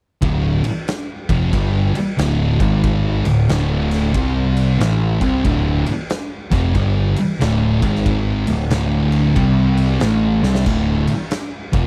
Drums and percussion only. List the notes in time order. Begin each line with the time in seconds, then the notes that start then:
0.22 kick, ride
0.64 ride
0.88 snare, ride
1.29 kick, ride
1.53 kick, ride
1.95 ride
2.19 snare, ride
2.60 kick, ride
2.84 kick, ride
3.25 ride
3.49 snare, ride
3.91 snare, ride
4.14 kick, ride
4.57 ride
4.80 snare, ride
5.21 kick, ride
5.45 kick, ride
5.86 ride
6.10 snare, ride
6.52 kick, snare, ride
6.75 kick, ride
7.16 ride
7.41 snare, ride
7.82 kick, ride
7.95 snare
8.06 kick, ride
8.47 ride
8.70 snare, ride
9.12 ride
9.36 kick, ride
9.77 ride
10.00 snare, ride
10.43 snare
10.55 snare
10.66 kick, crash
11.07 ride
11.31 snare, ride
11.73 kick, ride